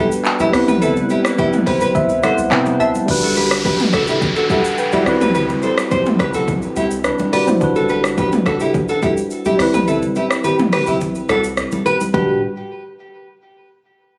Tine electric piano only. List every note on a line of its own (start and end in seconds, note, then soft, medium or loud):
0.00 0.48 G3 medium
0.00 0.49 B3 medium
0.00 0.50 D4 medium
0.00 0.50 F#4 medium
0.00 0.51 B4 medium
0.51 2.46 G3 medium
0.51 2.47 B3 medium
0.51 2.48 C4 medium
0.51 2.48 E4 medium
0.56 2.49 B4 medium
1.67 1.93 C5 medium
1.95 2.21 E5 medium
2.23 2.50 F#5 medium
2.50 3.05 G3 medium
2.50 3.08 B3 medium
2.50 3.08 C4 medium
2.50 3.09 E4 medium
2.50 3.09 B4 medium
2.50 2.78 G5 medium
2.80 3.06 A5 medium
3.06 5.01 G3 medium
3.06 5.02 D4 medium
3.06 4.47 F#4 medium
3.11 4.48 B4 medium
4.50 4.77 A4 medium
4.50 4.77 F#5 medium
4.78 4.92 B4 medium
4.78 4.92 G5 medium
4.93 5.20 F#4 medium
4.93 5.20 D5 medium
5.04 7.28 G3 medium
5.04 7.28 C4 medium
5.04 7.01 E4 medium
5.09 7.02 B4 medium
7.05 7.32 D4 medium
7.05 7.31 B4 medium
7.33 7.47 F#4 medium
7.33 7.47 D5 medium
7.48 7.75 E4 medium
7.48 7.74 C5 medium
7.59 9.54 G3 medium
7.59 9.55 D4 medium
7.59 9.56 F#4 medium
7.64 9.56 B4 medium
9.57 11.80 G3 medium
9.57 11.81 C4 medium
9.57 11.82 E4 medium
9.62 11.83 B4 medium
12.14 12.40 G3 medium
12.14 12.40 D4 medium
12.14 12.40 F#4 medium
12.14 12.40 B4 medium